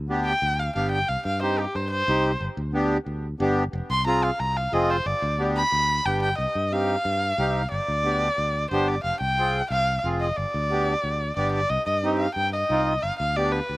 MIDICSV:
0, 0, Header, 1, 4, 480
1, 0, Start_track
1, 0, Key_signature, -3, "minor"
1, 0, Tempo, 331675
1, 1572, Time_signature, 4, 2, 24, 8
1, 19928, End_track
2, 0, Start_track
2, 0, Title_t, "Erhu"
2, 0, Program_c, 0, 110
2, 364, Note_on_c, 0, 79, 101
2, 856, Note_on_c, 0, 77, 87
2, 878, Note_off_c, 0, 79, 0
2, 1087, Note_off_c, 0, 77, 0
2, 1100, Note_on_c, 0, 77, 76
2, 1320, Note_off_c, 0, 77, 0
2, 1329, Note_on_c, 0, 79, 87
2, 1571, Note_on_c, 0, 77, 86
2, 1593, Note_off_c, 0, 79, 0
2, 1804, Note_off_c, 0, 77, 0
2, 1830, Note_on_c, 0, 77, 93
2, 2054, Note_off_c, 0, 77, 0
2, 2066, Note_on_c, 0, 72, 77
2, 2307, Note_on_c, 0, 67, 82
2, 2328, Note_off_c, 0, 72, 0
2, 2538, Note_on_c, 0, 72, 90
2, 2560, Note_off_c, 0, 67, 0
2, 2756, Note_off_c, 0, 72, 0
2, 2765, Note_on_c, 0, 72, 97
2, 3467, Note_off_c, 0, 72, 0
2, 5653, Note_on_c, 0, 84, 104
2, 5886, Note_off_c, 0, 84, 0
2, 5893, Note_on_c, 0, 82, 98
2, 6127, Note_on_c, 0, 77, 86
2, 6149, Note_off_c, 0, 82, 0
2, 6365, Note_on_c, 0, 82, 89
2, 6387, Note_off_c, 0, 77, 0
2, 6606, Note_on_c, 0, 77, 84
2, 6627, Note_off_c, 0, 82, 0
2, 6853, Note_on_c, 0, 75, 92
2, 6875, Note_off_c, 0, 77, 0
2, 7094, Note_on_c, 0, 72, 92
2, 7116, Note_off_c, 0, 75, 0
2, 7326, Note_on_c, 0, 74, 94
2, 7348, Note_off_c, 0, 72, 0
2, 7795, Note_off_c, 0, 74, 0
2, 8057, Note_on_c, 0, 83, 111
2, 8764, Note_on_c, 0, 79, 91
2, 8785, Note_off_c, 0, 83, 0
2, 9001, Note_off_c, 0, 79, 0
2, 9009, Note_on_c, 0, 79, 94
2, 9231, Note_off_c, 0, 79, 0
2, 9240, Note_on_c, 0, 75, 88
2, 9734, Note_on_c, 0, 77, 102
2, 9755, Note_off_c, 0, 75, 0
2, 11154, Note_off_c, 0, 77, 0
2, 11163, Note_on_c, 0, 74, 103
2, 12552, Note_off_c, 0, 74, 0
2, 12603, Note_on_c, 0, 72, 87
2, 12856, Note_on_c, 0, 74, 94
2, 12877, Note_off_c, 0, 72, 0
2, 13076, Note_off_c, 0, 74, 0
2, 13085, Note_on_c, 0, 77, 87
2, 13313, Note_off_c, 0, 77, 0
2, 13322, Note_on_c, 0, 79, 103
2, 13998, Note_off_c, 0, 79, 0
2, 14050, Note_on_c, 0, 77, 101
2, 14499, Note_off_c, 0, 77, 0
2, 14767, Note_on_c, 0, 75, 83
2, 15009, Note_on_c, 0, 74, 91
2, 15030, Note_off_c, 0, 75, 0
2, 16443, Note_off_c, 0, 74, 0
2, 16452, Note_on_c, 0, 74, 87
2, 16668, Note_off_c, 0, 74, 0
2, 16676, Note_on_c, 0, 74, 93
2, 16926, Note_on_c, 0, 75, 94
2, 16947, Note_off_c, 0, 74, 0
2, 17156, Note_off_c, 0, 75, 0
2, 17165, Note_on_c, 0, 75, 79
2, 17616, Note_off_c, 0, 75, 0
2, 17648, Note_on_c, 0, 77, 76
2, 17868, Note_off_c, 0, 77, 0
2, 17877, Note_on_c, 0, 79, 96
2, 18109, Note_off_c, 0, 79, 0
2, 18131, Note_on_c, 0, 75, 89
2, 18846, Note_on_c, 0, 77, 93
2, 18868, Note_off_c, 0, 75, 0
2, 19083, Note_off_c, 0, 77, 0
2, 19091, Note_on_c, 0, 77, 87
2, 19336, Note_on_c, 0, 74, 91
2, 19357, Note_off_c, 0, 77, 0
2, 19570, Note_on_c, 0, 71, 83
2, 19592, Note_off_c, 0, 74, 0
2, 19928, Note_off_c, 0, 71, 0
2, 19928, End_track
3, 0, Start_track
3, 0, Title_t, "Accordion"
3, 0, Program_c, 1, 21
3, 131, Note_on_c, 1, 59, 85
3, 139, Note_on_c, 1, 62, 77
3, 144, Note_on_c, 1, 67, 95
3, 467, Note_off_c, 1, 59, 0
3, 471, Note_off_c, 1, 62, 0
3, 474, Note_off_c, 1, 67, 0
3, 1096, Note_on_c, 1, 59, 70
3, 1097, Note_on_c, 1, 62, 69
3, 1103, Note_on_c, 1, 67, 70
3, 1430, Note_off_c, 1, 59, 0
3, 1430, Note_off_c, 1, 62, 0
3, 1434, Note_off_c, 1, 67, 0
3, 2046, Note_on_c, 1, 60, 76
3, 2052, Note_on_c, 1, 63, 69
3, 2055, Note_on_c, 1, 67, 79
3, 2385, Note_off_c, 1, 60, 0
3, 2388, Note_off_c, 1, 63, 0
3, 2390, Note_off_c, 1, 67, 0
3, 3013, Note_on_c, 1, 60, 67
3, 3014, Note_on_c, 1, 63, 67
3, 3020, Note_on_c, 1, 67, 84
3, 3349, Note_off_c, 1, 60, 0
3, 3349, Note_off_c, 1, 63, 0
3, 3352, Note_off_c, 1, 67, 0
3, 3954, Note_on_c, 1, 59, 89
3, 3963, Note_on_c, 1, 62, 76
3, 3969, Note_on_c, 1, 67, 98
3, 4299, Note_off_c, 1, 59, 0
3, 4304, Note_off_c, 1, 62, 0
3, 4307, Note_off_c, 1, 67, 0
3, 4916, Note_on_c, 1, 59, 82
3, 4926, Note_on_c, 1, 62, 78
3, 4932, Note_on_c, 1, 67, 101
3, 5260, Note_off_c, 1, 59, 0
3, 5265, Note_off_c, 1, 62, 0
3, 5268, Note_off_c, 1, 67, 0
3, 5883, Note_on_c, 1, 60, 78
3, 5889, Note_on_c, 1, 65, 74
3, 5897, Note_on_c, 1, 68, 85
3, 6224, Note_off_c, 1, 60, 0
3, 6227, Note_off_c, 1, 65, 0
3, 6231, Note_off_c, 1, 68, 0
3, 6840, Note_on_c, 1, 60, 73
3, 6848, Note_on_c, 1, 65, 66
3, 6854, Note_on_c, 1, 68, 92
3, 7182, Note_off_c, 1, 60, 0
3, 7186, Note_off_c, 1, 65, 0
3, 7189, Note_off_c, 1, 68, 0
3, 7795, Note_on_c, 1, 59, 84
3, 7803, Note_on_c, 1, 62, 73
3, 7807, Note_on_c, 1, 67, 78
3, 8140, Note_off_c, 1, 59, 0
3, 8143, Note_off_c, 1, 62, 0
3, 8146, Note_off_c, 1, 67, 0
3, 8772, Note_on_c, 1, 59, 81
3, 8776, Note_on_c, 1, 62, 65
3, 8782, Note_on_c, 1, 67, 84
3, 9108, Note_off_c, 1, 59, 0
3, 9110, Note_off_c, 1, 62, 0
3, 9113, Note_off_c, 1, 67, 0
3, 9727, Note_on_c, 1, 60, 72
3, 9730, Note_on_c, 1, 63, 62
3, 9736, Note_on_c, 1, 67, 79
3, 10066, Note_off_c, 1, 60, 0
3, 10067, Note_off_c, 1, 63, 0
3, 10071, Note_off_c, 1, 67, 0
3, 10684, Note_on_c, 1, 60, 86
3, 10690, Note_on_c, 1, 63, 72
3, 10696, Note_on_c, 1, 67, 87
3, 11025, Note_off_c, 1, 60, 0
3, 11028, Note_off_c, 1, 63, 0
3, 11031, Note_off_c, 1, 67, 0
3, 11638, Note_on_c, 1, 59, 68
3, 11649, Note_on_c, 1, 62, 62
3, 11651, Note_on_c, 1, 67, 79
3, 11982, Note_off_c, 1, 59, 0
3, 11988, Note_off_c, 1, 62, 0
3, 11989, Note_off_c, 1, 67, 0
3, 12616, Note_on_c, 1, 59, 71
3, 12621, Note_on_c, 1, 62, 66
3, 12628, Note_on_c, 1, 67, 85
3, 12952, Note_off_c, 1, 59, 0
3, 12954, Note_off_c, 1, 62, 0
3, 12958, Note_off_c, 1, 67, 0
3, 13577, Note_on_c, 1, 60, 71
3, 13588, Note_on_c, 1, 68, 80
3, 13589, Note_on_c, 1, 65, 66
3, 13912, Note_off_c, 1, 60, 0
3, 13918, Note_off_c, 1, 65, 0
3, 13918, Note_off_c, 1, 68, 0
3, 14534, Note_on_c, 1, 60, 65
3, 14541, Note_on_c, 1, 65, 64
3, 14547, Note_on_c, 1, 68, 72
3, 14871, Note_off_c, 1, 60, 0
3, 14875, Note_off_c, 1, 65, 0
3, 14877, Note_off_c, 1, 68, 0
3, 15488, Note_on_c, 1, 59, 62
3, 15494, Note_on_c, 1, 62, 61
3, 15499, Note_on_c, 1, 67, 81
3, 15828, Note_off_c, 1, 59, 0
3, 15831, Note_off_c, 1, 62, 0
3, 15834, Note_off_c, 1, 67, 0
3, 16448, Note_on_c, 1, 59, 62
3, 16456, Note_on_c, 1, 62, 58
3, 16460, Note_on_c, 1, 67, 76
3, 16788, Note_off_c, 1, 59, 0
3, 16792, Note_off_c, 1, 62, 0
3, 16794, Note_off_c, 1, 67, 0
3, 17415, Note_on_c, 1, 60, 69
3, 17421, Note_on_c, 1, 63, 63
3, 17428, Note_on_c, 1, 67, 81
3, 17752, Note_off_c, 1, 60, 0
3, 17755, Note_off_c, 1, 63, 0
3, 17758, Note_off_c, 1, 67, 0
3, 18376, Note_on_c, 1, 60, 71
3, 18383, Note_on_c, 1, 63, 65
3, 18390, Note_on_c, 1, 65, 78
3, 18712, Note_off_c, 1, 60, 0
3, 18716, Note_off_c, 1, 63, 0
3, 18719, Note_off_c, 1, 65, 0
3, 19343, Note_on_c, 1, 59, 75
3, 19347, Note_on_c, 1, 62, 61
3, 19355, Note_on_c, 1, 67, 78
3, 19675, Note_off_c, 1, 59, 0
3, 19678, Note_off_c, 1, 62, 0
3, 19681, Note_off_c, 1, 67, 0
3, 19928, End_track
4, 0, Start_track
4, 0, Title_t, "Fingered electric bass"
4, 0, Program_c, 2, 33
4, 0, Note_on_c, 2, 38, 84
4, 470, Note_off_c, 2, 38, 0
4, 608, Note_on_c, 2, 38, 92
4, 993, Note_off_c, 2, 38, 0
4, 1096, Note_on_c, 2, 31, 111
4, 1478, Note_off_c, 2, 31, 0
4, 1578, Note_on_c, 2, 36, 85
4, 1671, Note_off_c, 2, 36, 0
4, 1811, Note_on_c, 2, 43, 89
4, 2388, Note_off_c, 2, 43, 0
4, 2533, Note_on_c, 2, 43, 85
4, 2917, Note_off_c, 2, 43, 0
4, 3008, Note_on_c, 2, 36, 104
4, 3394, Note_off_c, 2, 36, 0
4, 3481, Note_on_c, 2, 31, 97
4, 3582, Note_off_c, 2, 31, 0
4, 3721, Note_on_c, 2, 38, 88
4, 4302, Note_off_c, 2, 38, 0
4, 4433, Note_on_c, 2, 38, 83
4, 4825, Note_off_c, 2, 38, 0
4, 4920, Note_on_c, 2, 31, 108
4, 5309, Note_off_c, 2, 31, 0
4, 5400, Note_on_c, 2, 29, 106
4, 5501, Note_off_c, 2, 29, 0
4, 5640, Note_on_c, 2, 36, 93
4, 6221, Note_off_c, 2, 36, 0
4, 6366, Note_on_c, 2, 36, 89
4, 6752, Note_off_c, 2, 36, 0
4, 6843, Note_on_c, 2, 29, 104
4, 7230, Note_off_c, 2, 29, 0
4, 7320, Note_on_c, 2, 31, 98
4, 7421, Note_off_c, 2, 31, 0
4, 7558, Note_on_c, 2, 38, 103
4, 8140, Note_off_c, 2, 38, 0
4, 8282, Note_on_c, 2, 38, 86
4, 8670, Note_off_c, 2, 38, 0
4, 8763, Note_on_c, 2, 31, 115
4, 9151, Note_off_c, 2, 31, 0
4, 9239, Note_on_c, 2, 36, 81
4, 9340, Note_off_c, 2, 36, 0
4, 9484, Note_on_c, 2, 43, 90
4, 10063, Note_off_c, 2, 43, 0
4, 10204, Note_on_c, 2, 43, 86
4, 10592, Note_off_c, 2, 43, 0
4, 10683, Note_on_c, 2, 36, 102
4, 11071, Note_off_c, 2, 36, 0
4, 11168, Note_on_c, 2, 31, 88
4, 11266, Note_off_c, 2, 31, 0
4, 11408, Note_on_c, 2, 38, 80
4, 11987, Note_off_c, 2, 38, 0
4, 12127, Note_on_c, 2, 38, 86
4, 12514, Note_off_c, 2, 38, 0
4, 12608, Note_on_c, 2, 31, 102
4, 12995, Note_off_c, 2, 31, 0
4, 13084, Note_on_c, 2, 29, 90
4, 13184, Note_off_c, 2, 29, 0
4, 13323, Note_on_c, 2, 36, 83
4, 13904, Note_off_c, 2, 36, 0
4, 14044, Note_on_c, 2, 36, 89
4, 14433, Note_off_c, 2, 36, 0
4, 14529, Note_on_c, 2, 29, 99
4, 14916, Note_off_c, 2, 29, 0
4, 15015, Note_on_c, 2, 31, 92
4, 15111, Note_off_c, 2, 31, 0
4, 15257, Note_on_c, 2, 38, 85
4, 15833, Note_off_c, 2, 38, 0
4, 15971, Note_on_c, 2, 38, 77
4, 16357, Note_off_c, 2, 38, 0
4, 16449, Note_on_c, 2, 31, 102
4, 16836, Note_off_c, 2, 31, 0
4, 16932, Note_on_c, 2, 36, 89
4, 17029, Note_off_c, 2, 36, 0
4, 17172, Note_on_c, 2, 43, 82
4, 17750, Note_off_c, 2, 43, 0
4, 17889, Note_on_c, 2, 43, 84
4, 18276, Note_off_c, 2, 43, 0
4, 18379, Note_on_c, 2, 36, 93
4, 18762, Note_off_c, 2, 36, 0
4, 18861, Note_on_c, 2, 31, 80
4, 18955, Note_off_c, 2, 31, 0
4, 19102, Note_on_c, 2, 38, 88
4, 19675, Note_off_c, 2, 38, 0
4, 19819, Note_on_c, 2, 38, 77
4, 19928, Note_off_c, 2, 38, 0
4, 19928, End_track
0, 0, End_of_file